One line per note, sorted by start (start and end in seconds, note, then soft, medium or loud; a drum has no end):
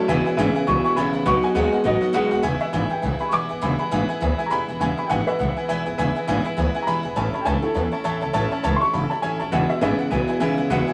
0.00 0.34 C#4 loud
0.08 0.20 E1 loud
0.08 0.26 E2 loud
0.08 0.26 B2 medium
0.08 0.26 E3 loud
0.08 0.26 G#3 medium
0.08 0.26 B3 loud
0.08 0.24 E4 loud
0.08 0.18 B4 loud
0.08 0.19 E5 loud
0.08 0.19 G#5 loud
0.25 0.38 E3 soft
0.25 0.38 G#3 medium
0.25 0.38 B3 medium
0.25 0.38 E4 medium
0.25 0.33 B4 medium
0.25 0.33 E5 medium
0.25 0.33 G#5 loud
0.25 muted upright bass stroke medium
0.37 0.49 G#1 loud
0.37 0.55 E2 loud
0.37 0.55 B2 loud
0.37 0.65 C#3 loud
0.37 0.55 E3 loud
0.37 0.55 G#3 loud
0.37 0.54 B3 loud
0.37 0.54 E4 loud
0.37 0.48 B4 loud
0.37 0.48 E5 loud
0.37 0.48 G#5 loud
0.55 0.66 E3 medium
0.55 0.67 G#3 medium
0.55 0.67 B3 medium
0.55 0.67 E4 medium
0.55 0.62 B4 loud
0.55 0.62 E5 medium
0.55 0.63 G#5 loud
0.55 muted upright bass stroke medium
0.67 0.79 B1 loud
0.67 0.94 E2 medium
0.67 0.94 B2 loud
0.67 0.84 E3 medium
0.67 0.85 G#3 medium
0.67 0.84 B3 medium
0.67 0.83 E4 medium
0.67 0.78 B4 medium
0.67 0.78 E5 medium
0.67 0.78 G#5 medium
0.67 0.83 C#6 loud
0.84 0.96 E3 soft
0.84 0.96 G#3 medium
0.84 0.97 B3 medium
0.84 0.97 E4 medium
0.84 0.92 B4 medium
0.84 0.92 E5 medium
0.84 0.92 G#5 medium
0.84 0.96 C#6 loud
0.84 muted upright bass stroke medium
0.96 1.08 B1 loud
0.96 1.14 E2 medium
0.96 1.14 B2 medium
0.96 1.24 C#3 medium
0.96 1.14 E3 medium
0.96 1.13 G#3 medium
0.96 1.13 B3 medium
0.96 1.12 E4 medium
0.96 1.07 B4 loud
0.96 1.07 E5 medium
0.96 1.07 G#5 loud
0.96 1.25 B5 loud
1.13 1.22 G#1 medium
1.13 1.26 E3 soft
1.13 1.26 G#3 medium
1.13 1.25 B3 medium
1.13 1.26 E4 medium
1.13 1.21 B4 medium
1.13 1.21 E5 medium
1.13 1.21 B5 medium
1.26 1.37 B1 loud
1.26 1.43 B2 medium
1.26 1.43 F#3 medium
1.26 1.43 B3 medium
1.26 1.43 D#4 loud
1.26 1.42 F#4 medium
1.26 1.36 B4 loud
1.26 1.36 D#5 loud
1.26 1.37 F#5 loud
1.26 1.43 C#6 loud
1.43 1.55 B3 soft
1.43 1.55 D#4 medium
1.43 1.55 F#4 medium
1.43 1.51 B4 medium
1.43 1.51 D#5 medium
1.43 1.51 F#5 medium
1.43 1.84 G#5 loud
1.55 1.67 D#2 loud
1.55 1.72 B2 medium
1.55 1.73 F#3 medium
1.55 1.83 G#3 loud
1.55 1.73 B3 medium
1.55 1.72 D#4 loud
1.55 1.71 F#4 medium
1.55 1.65 B4 loud
1.55 1.66 D#5 medium
1.55 1.66 F#5 loud
1.72 1.83 B3 soft
1.72 1.84 D#4 medium
1.72 1.85 F#4 medium
1.72 1.80 B4 medium
1.72 1.80 D#5 medium
1.72 1.80 F#5 medium
1.72 muted upright bass stroke medium
1.84 1.96 A1 loud
1.84 2.12 B2 medium
1.84 2.02 F#3 medium
1.84 2.01 B3 medium
1.84 2.01 D#4 medium
1.84 2.00 F#4 medium
1.84 1.95 B4 medium
1.84 1.95 D#5 medium
1.84 2.02 D#5 loud
1.84 1.95 F#5 loud
2.01 2.13 B3 medium
2.01 2.13 D#4 medium
2.01 2.13 F#4 medium
2.01 2.09 B4 medium
2.01 2.09 D#5 medium
2.01 2.09 F#5 medium
2.13 2.26 B1 medium
2.13 2.31 B2 loud
2.13 2.31 F#3 loud
2.13 2.42 G#3 loud
2.13 2.31 B3 medium
2.13 2.31 D#4 loud
2.13 2.30 F#4 loud
2.13 2.25 B4 loud
2.13 2.25 D#5 loud
2.13 2.25 F#5 loud
2.31 2.39 D#2 medium
2.31 2.43 B3 medium
2.31 2.44 D#4 medium
2.31 2.44 F#4 medium
2.31 2.39 B4 medium
2.31 2.39 D#5 medium
2.31 2.39 F#5 loud
2.43 2.55 E1 loud
2.43 2.60 E2 medium
2.43 2.61 B2 medium
2.43 2.61 E3 medium
2.43 2.60 G#3 medium
2.43 2.59 B3 medium
2.43 2.59 E4 loud
2.43 2.54 B4 loud
2.43 2.54 E5 loud
2.43 2.54 G#5 loud
2.60 2.72 E3 soft
2.60 2.72 G#3 medium
2.60 2.72 B3 medium
2.60 2.73 E4 medium
2.60 2.68 B4 medium
2.60 2.90 E5 loud
2.60 2.69 G#5 medium
2.60 muted upright bass stroke medium
2.73 2.85 G#1 medium
2.73 2.90 E2 medium
2.73 2.90 B2 medium
2.73 2.91 E3 medium
2.73 2.90 G#3 medium
2.73 2.89 B3 medium
2.73 2.88 E4 medium
2.73 2.83 B4 loud
2.73 2.83 E5 medium
2.73 2.84 G#5 loud
2.90 3.01 E3 soft
2.90 3.02 G#3 medium
2.90 3.02 B3 medium
2.90 3.02 E4 medium
2.90 2.98 B4 medium
2.90 2.98 E5 medium
2.90 3.19 G5 medium
2.90 2.98 G#5 medium
2.90 muted upright bass stroke medium
3.02 3.14 B1 medium
3.02 3.20 E3 medium
3.02 3.19 G#3 medium
3.02 3.18 B3 medium
3.02 3.18 E4 medium
3.02 3.13 B4 medium
3.02 3.13 E5 medium
3.02 3.13 G#5 medium
3.19 3.31 E3 soft
3.19 3.31 G#3 medium
3.19 3.31 B3 soft
3.19 3.32 E4 medium
3.19 3.27 B4 medium
3.19 3.28 E5 medium
3.19 3.28 G#5 medium
3.19 3.32 B5 medium
3.19 muted upright bass stroke medium
3.28 3.49 E2 medium
3.28 3.49 B2 medium
3.28 3.49 E3 medium
3.28 3.43 B4 medium
3.28 3.43 E5 medium
3.28 3.31 C#6 medium
3.32 3.44 B1 medium
3.32 3.49 G#3 medium
3.32 3.48 B3 medium
3.32 3.48 E4 medium
3.32 3.43 G#5 loud
3.32 3.61 D6 loud
3.49 3.58 G#1 medium
3.49 3.60 E3 soft
3.49 3.61 G#3 medium
3.49 3.61 B3 medium
3.49 3.61 E4 medium
3.49 3.57 B4 medium
3.49 3.57 E5 medium
3.49 3.57 G#5 medium
3.61 3.74 E1 loud
3.61 3.79 E2 medium
3.61 3.79 B2 medium
3.61 3.79 E3 medium
3.61 3.79 G#3 medium
3.61 3.78 B3 medium
3.61 3.77 E4 medium
3.61 3.72 B4 loud
3.61 3.72 E5 medium
3.61 3.73 G#5 loud
3.61 3.78 B5 medium
3.79 3.90 E3 soft
3.79 3.91 G#3 soft
3.79 3.91 B3 medium
3.79 3.91 E4 medium
3.79 3.87 B4 medium
3.79 3.87 E5 medium
3.79 3.87 G#5 medium
3.79 3.91 B5 medium
3.79 muted upright bass stroke medium
3.91 4.03 G#1 medium
3.91 4.08 E2 medium
3.91 4.09 B2 medium
3.91 4.09 E3 medium
3.91 4.09 G#3 medium
3.91 4.08 B3 loud
3.91 4.07 E4 medium
3.91 4.02 B4 loud
3.91 4.02 E5 medium
3.91 4.02 G#5 loud
4.08 4.19 E3 medium
4.08 4.20 G#3 medium
4.08 4.21 B3 medium
4.08 4.21 E4 medium
4.08 4.16 B4 loud
4.08 4.16 E5 medium
4.08 4.16 G#5 loud
4.08 muted upright bass stroke medium
4.21 4.33 D2 medium
4.21 4.38 E3 medium
4.21 4.38 G#3 medium
4.21 4.38 B3 medium
4.21 4.38 E4 medium
4.21 4.32 B4 medium
4.21 4.32 E5 medium
4.21 4.32 G#5 loud
4.38 4.50 E3 medium
4.38 4.50 G#3 medium
4.38 4.51 B3 medium
4.38 4.51 E4 medium
4.38 4.45 B4 medium
4.38 4.46 E5 medium
4.38 4.46 G#5 loud
4.38 muted upright bass stroke medium
4.46 4.49 A#5 medium
4.50 4.62 E1 medium
4.50 4.68 E2 medium
4.50 4.68 B2 medium
4.50 4.68 E3 medium
4.50 4.68 G#3 medium
4.50 4.68 B3 medium
4.50 4.67 E4 medium
4.50 4.61 B4 loud
4.50 4.61 E5 medium
4.50 4.61 G#5 loud
4.50 4.79 B5 loud
4.68 4.76 E1 medium
4.68 4.80 E3 soft
4.68 4.80 G#3 medium
4.68 4.81 B3 medium
4.68 4.80 E4 medium
4.68 4.75 B4 medium
4.68 4.75 E5 medium
4.68 4.75 G#5 medium
4.80 4.92 E1 loud
4.80 4.98 E2 medium
4.80 4.98 B2 medium
4.80 4.98 E3 medium
4.80 4.98 G#3 medium
4.80 4.97 B3 medium
4.80 4.96 E4 medium
4.80 4.90 B4 loud
4.80 4.91 E5 medium
4.80 4.91 G#5 loud
4.80 4.97 G#5 medium
4.97 5.09 E3 soft
4.97 5.09 G#3 medium
4.97 5.09 B3 soft
4.97 5.10 E4 medium
4.97 5.05 B4 medium
4.97 5.05 E5 medium
4.97 5.05 G#5 medium
4.97 5.10 B5 medium
4.97 muted upright bass stroke medium
5.06 5.21 G#1 medium
5.06 5.27 E2 medium
5.06 5.27 B2 medium
5.06 5.27 E3 medium
5.06 5.20 B4 loud
5.06 5.20 E5 medium
5.06 5.20 F#5 loud
5.06 5.09 G5 medium
5.10 5.27 G#3 medium
5.10 5.26 B3 medium
5.10 5.26 E4 loud
5.10 5.27 G#5 loud
5.27 5.38 E3 medium
5.27 5.39 G#3 medium
5.27 5.40 B3 medium
5.27 5.39 E4 medium
5.27 5.34 B4 medium
5.27 6.11 B4 loud
5.27 5.34 E5 medium
5.27 6.13 E5 loud
5.27 5.34 G#5 medium
5.39 5.51 B1 medium
5.39 5.56 E3 medium
5.39 5.57 G#3 medium
5.39 5.56 B3 medium
5.39 5.55 E4 medium
5.39 5.49 B4 medium
5.39 5.50 E5 medium
5.39 5.50 F#5 medium
5.56 5.68 E3 soft
5.56 5.69 G#3 medium
5.56 5.69 B3 medium
5.56 5.69 E4 medium
5.56 5.64 B4 medium
5.56 5.64 E5 medium
5.56 5.64 G#5 medium
5.56 muted upright bass stroke medium
5.68 5.81 B1 medium
5.68 5.86 E2 medium
5.68 5.86 B2 medium
5.68 5.86 E3 medium
5.68 5.86 G#3 medium
5.68 5.85 B3 loud
5.68 5.85 E4 loud
5.68 5.79 B4 loud
5.68 5.79 E5 loud
5.68 5.79 G#5 loud
5.85 5.94 G#1 medium
5.85 5.98 E3 medium
5.85 5.98 G#3 medium
5.85 5.99 B3 medium
5.85 5.98 E4 medium
5.85 5.93 B4 medium
5.85 5.93 E5 medium
5.85 5.93 G#5 medium
5.98 6.10 E1 loud
5.98 6.15 E2 medium
5.98 6.16 B2 medium
5.98 6.16 E3 loud
5.98 6.16 G#3 medium
5.98 6.15 B3 loud
5.98 6.14 E4 loud
5.98 6.08 B4 loud
5.98 6.08 E5 loud
5.98 6.09 G#5 loud
6.15 6.27 E3 soft
6.15 6.27 G#3 medium
6.15 6.28 B3 medium
6.15 6.28 E4 medium
6.15 6.23 B4 medium
6.15 6.23 E5 medium
6.15 6.23 G#5 medium
6.15 muted upright bass stroke medium
6.27 6.39 G#1 loud
6.27 6.45 E2 medium
6.27 6.45 B2 medium
6.27 6.45 E3 loud
6.27 6.45 G#3 medium
6.27 6.44 B3 loud
6.27 6.43 E4 loud
6.27 6.38 B4 loud
6.27 6.38 E5 loud
6.27 6.38 G#5 loud
6.45 6.56 E3 medium
6.45 6.56 G#3 medium
6.45 6.57 B3 medium
6.45 6.57 E4 medium
6.45 6.52 B4 medium
6.45 6.53 E5 medium
6.45 6.53 G#5 medium
6.45 muted upright bass stroke medium
6.57 6.69 D2 loud
6.57 6.74 E3 medium
6.57 6.75 G#3 medium
6.57 6.74 B3 medium
6.57 6.73 E4 medium
6.57 6.68 B4 medium
6.57 6.68 E5 medium
6.57 6.68 G#5 loud
6.74 6.86 E3 medium
6.74 6.87 G#3 medium
6.74 6.87 B3 medium
6.74 6.87 E4 medium
6.74 6.82 B4 medium
6.74 6.82 E5 medium
6.74 6.82 G#5 loud
6.82 6.85 A#5 medium
6.87 6.99 E1 medium
6.87 7.04 E2 medium
6.87 7.04 B2 medium
6.87 7.04 E3 medium
6.87 7.04 G#3 medium
6.87 7.03 B3 medium
6.87 7.02 E4 medium
6.87 6.97 B4 medium
6.87 6.97 E5 medium
6.87 6.97 G#5 loud
6.87 7.16 B5 loud
7.03 7.12 E1 medium
7.03 7.15 E3 soft
7.03 7.16 G#3 soft
7.03 7.16 B3 medium
7.03 7.16 E4 medium
7.03 7.11 B4 medium
7.03 7.12 E5 medium
7.03 7.12 G#5 medium
7.16 7.28 A1 medium
7.16 7.33 A2 medium
7.16 7.33 E3 medium
7.16 7.34 A3 medium
7.16 7.34 C#4 medium
7.16 7.32 E4 medium
7.16 7.26 C#5 loud
7.16 7.27 E5 medium
7.16 7.33 G#5 medium
7.16 7.27 A5 loud
7.33 7.45 A3 soft
7.33 7.45 C#4 soft
7.33 7.46 E4 medium
7.33 7.41 C#5 medium
7.33 7.41 E5 medium
7.33 7.41 A5 medium
7.33 7.46 B5 medium
7.33 muted upright bass stroke medium
7.41 7.44 G5 medium
7.45 7.57 C#2 loud
7.45 7.63 A2 medium
7.45 7.63 E3 medium
7.45 7.63 A3 medium
7.45 7.62 C#4 medium
7.45 7.61 E4 medium
7.45 7.56 C#5 loud
7.45 7.56 E5 medium
7.45 7.62 G#5 loud
7.45 7.56 A5 loud
7.62 7.74 A3 soft
7.62 7.75 C#4 medium
7.62 8.47 E4 medium
7.62 7.75 E4 medium
7.62 8.49 A4 medium
7.62 7.70 C#5 medium
7.62 7.70 E5 medium
7.62 7.70 A5 medium
7.62 muted upright bass stroke medium
7.74 7.87 E2 loud
7.74 7.92 E3 medium
7.74 7.92 A3 medium
7.74 7.91 C#4 medium
7.74 7.90 E4 medium
7.74 7.85 C#5 medium
7.74 7.85 E5 medium
7.74 7.86 A5 medium
7.92 8.04 A3 soft
7.92 8.04 C#4 medium
7.92 8.04 E4 medium
7.92 8.00 C#5 medium
7.92 8.00 E5 medium
7.92 8.00 A5 medium
7.92 muted upright bass stroke medium
8.04 8.16 E2 medium
8.04 8.22 A2 medium
8.04 8.22 E3 medium
8.04 8.22 A3 medium
8.04 8.21 C#4 medium
8.04 8.20 E4 medium
8.04 8.15 C#5 loud
8.04 8.15 E5 loud
8.04 8.15 A5 loud
8.21 8.30 C#2 medium
8.21 8.33 A3 medium
8.21 8.33 C#4 medium
8.21 8.34 E4 medium
8.21 8.29 C#5 medium
8.21 8.29 E5 medium
8.21 8.30 A5 medium
8.33 8.46 A1 loud
8.33 8.51 A2 medium
8.33 8.51 E3 medium
8.33 8.52 A3 medium
8.33 8.51 C#4 loud
8.33 8.50 E4 medium
8.33 8.44 C#5 loud
8.33 8.44 E5 loud
8.33 8.44 A5 loud
8.51 8.63 A3 soft
8.51 8.64 C#4 medium
8.51 8.64 E4 medium
8.51 8.59 C#5 medium
8.51 8.59 E5 medium
8.51 8.59 A5 medium
8.63 8.75 C#2 medium
8.63 8.81 A2 medium
8.63 8.81 E3 medium
8.63 8.81 A3 loud
8.63 8.82 C#4 loud
8.63 8.80 E4 loud
8.63 8.74 C#5 loud
8.63 8.74 E5 loud
8.63 8.74 A5 loud
8.76 8.78 C6 medium
8.80 8.93 A3 medium
8.80 8.93 C#4 medium
8.80 8.94 E4 medium
8.80 8.88 C#5 medium
8.80 8.88 E5 medium
8.80 8.88 A5 medium
8.80 8.93 C#6 loud
8.80 muted upright bass stroke medium
8.93 9.05 F#1 medium
8.93 9.11 E3 medium
8.93 9.11 A3 medium
8.93 9.11 C#4 medium
8.93 9.10 E4 medium
8.93 9.04 C#5 medium
8.93 9.04 E5 medium
8.93 9.04 A5 medium
8.93 9.10 B5 medium
9.10 9.22 A3 soft
9.10 9.22 C#4 soft
9.10 9.22 E4 medium
9.10 9.18 C#5 medium
9.10 9.18 E5 medium
9.10 9.22 A5 loud
9.10 9.18 B5 medium
9.10 muted upright bass stroke medium
9.22 9.35 A1 medium
9.22 9.40 A2 medium
9.22 9.40 E3 medium
9.22 9.40 A3 medium
9.22 9.40 C#4 medium
9.22 9.38 E4 medium
9.22 9.33 C#5 loud
9.22 9.33 E5 medium
9.22 9.39 G#5 medium
9.22 9.33 G#5 loud
9.39 9.48 A1 medium
9.39 9.52 A3 soft
9.39 9.52 C#4 soft
9.39 9.52 E4 medium
9.39 9.47 C#5 medium
9.39 9.47 E5 medium
9.39 9.52 A5 medium
9.39 9.48 A5 medium
9.52 9.64 E1 loud
9.52 9.69 E2 medium
9.52 9.69 B2 medium
9.52 9.70 E3 medium
9.52 9.69 G#3 medium
9.52 9.69 B3 medium
9.52 9.68 E4 medium
9.52 9.63 B4 loud
9.52 9.63 E5 medium
9.52 9.69 F#5 loud
9.52 9.63 G#5 loud
9.69 9.81 E3 soft
9.69 9.81 G#3 soft
9.69 9.81 B3 medium
9.69 9.81 E4 medium
9.69 9.77 B4 medium
9.69 9.77 E5 medium
9.69 9.81 E5 loud
9.69 9.77 G#5 medium
9.69 muted upright bass stroke medium
9.81 9.93 G#1 loud
9.81 9.99 E2 medium
9.81 9.99 B2 medium
9.81 10.09 C#3 medium
9.81 9.99 E3 medium
9.81 9.99 G#3 medium
9.81 9.98 B3 medium
9.81 9.98 E4 medium
9.81 9.92 B4 loud
9.81 9.98 B4 medium
9.81 9.92 E5 loud
9.81 9.99 E5 loud
9.81 9.92 G#5 loud
9.98 10.10 E3 soft
9.98 10.10 G#3 medium
9.98 10.11 B3 medium
9.98 10.11 E4 medium
9.98 10.06 B4 medium
9.98 10.06 E5 medium
9.98 10.06 F#5 medium
9.98 muted upright bass stroke medium
10.11 10.23 B1 loud
10.11 10.38 E2 medium
10.11 10.38 B2 loud
10.11 10.28 E3 medium
10.11 10.28 G#3 medium
10.11 10.28 B3 medium
10.11 10.27 E4 medium
10.11 10.21 B4 medium
10.11 10.21 E5 medium
10.11 10.21 G#5 loud
10.28 10.40 E3 medium
10.28 10.40 G#3 medium
10.28 10.40 B3 medium
10.28 10.41 E4 medium
10.28 10.36 B4 medium
10.28 10.36 E5 medium
10.28 10.36 G#5 loud
10.28 muted upright bass stroke medium
10.40 10.52 B1 medium
10.40 10.58 E2 medium
10.40 10.58 B2 medium
10.40 10.68 C#3 loud
10.40 10.58 E3 medium
10.40 10.57 G#3 medium
10.40 10.57 B3 medium
10.40 10.56 E4 loud
10.40 10.51 B4 loud
10.40 10.51 E5 loud
10.40 10.51 G#5 loud
10.57 10.70 E3 medium
10.57 10.70 G#3 medium
10.57 10.70 B3 medium
10.57 10.70 E4 medium
10.57 10.65 B4 medium
10.57 10.65 E5 medium
10.57 10.66 G#5 medium
10.70 10.81 E1 loud
10.70 10.88 E2 medium
10.70 10.88 B2 medium
10.70 10.88 E3 medium
10.70 10.87 G#3 loud
10.70 10.87 B3 loud
10.70 10.86 E4 loud
10.70 10.81 B4 loud
10.70 10.81 E5 loud
10.70 10.81 F#5 loud
10.87 10.93 E3 medium
10.87 10.93 G#3 medium
10.87 10.93 B3 medium
10.87 10.93 E4 medium
10.87 10.93 B4 medium
10.87 10.93 E5 medium
10.87 10.93 G#5 loud